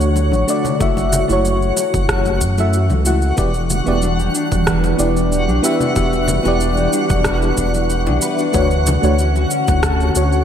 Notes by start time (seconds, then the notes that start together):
Already playing: D2 D3 A3 D4 F#4 C#5 F#5
0.01 cabasa
0.16 muted conga, cabasa
0.32 A1, high conga, cabasa
0.47 A3 D4 F#4 D5, cabasa
0.65 muted conga, low conga, cabasa
0.79 F#1 E3 A3 E4 F#4 E5, kick, cabasa
0.97 muted conga, cabasa
1.13 low conga, cabasa
1.28 F#1 A3 E4 F#4, cabasa
1.32 C#5
1.45 muted conga, cabasa
1.62 cabasa
1.77 muted conga, cabasa
1.94 F#1, kick, high conga, cabasa
2.09 kick, cross-stick, cabasa
2.25 muted conga, cabasa
2.41 F#2, kick, cabasa
2.58 A3 E4 F#4 E5, muted conga, cabasa
2.73 cabasa
2.90 C#2, high conga, low conga, cabasa
3.05 A3 E4 F#4 F#5, muted conga, cabasa
3.22 cabasa
3.36 E1 G3 B3 D4 E4 G4 D5, kick, cabasa
3.54 cabasa
3.70 muted conga, low conga, cabasa
3.86 E1 B3 E4 G4 D5, cabasa
4.02 D4, muted conga, cabasa
4.19 G4, cabasa
4.35 D4, cabasa
4.52 E1, kick, muted conga, high conga, cabasa
4.67 B4, kick, cross-stick, cabasa
4.84 muted conga, cabasa
4.97 E1 B3 D4 E4 G4 D5, cabasa
5.17 cabasa
5.32 G4, muted conga, cabasa
5.48 B1 D4, high conga, cabasa
5.62 B3 E4 G4 B4 E5, muted conga, cabasa
5.80 D4, low conga, cabasa
5.95 E1 B3 E4 G4 E5, kick, cabasa
6.13 muted conga, cabasa
6.28 low conga, cabasa
6.43 E1 B3 E4 G4, muted conga, cabasa
6.48 D5
6.61 D4, cabasa
6.77 G4, cabasa
6.93 D4, muted conga, cabasa
7.10 E1, kick, high conga, cabasa
7.24 B4, kick, cross-stick, muted conga, cabasa
7.42 cabasa
7.57 E1 D4, kick, cabasa
7.74 muted conga, cabasa
7.89 G4, cabasa
8.06 B1 D4, muted conga, high conga, low conga, cabasa
8.21 B4, cabasa
8.39 D4, cabasa
8.52 D2 D3 A3 C#4 D4 F#4 C#5, kick, muted conga, cabasa
8.71 cabasa
8.86 muted conga, low conga, cabasa
9.02 D2 A3 D4 F#4 C#5, cabasa
9.19 C#4, cabasa
9.36 F#4, muted conga, cabasa
9.51 C#4, cabasa
9.68 D2, kick, muted conga, high conga, cabasa
9.83 A4, kick, cross-stick, cabasa
10.00 cabasa
10.14 D2 D3 A3 C#4 F#4 C#5, muted conga, cabasa
10.32 cabasa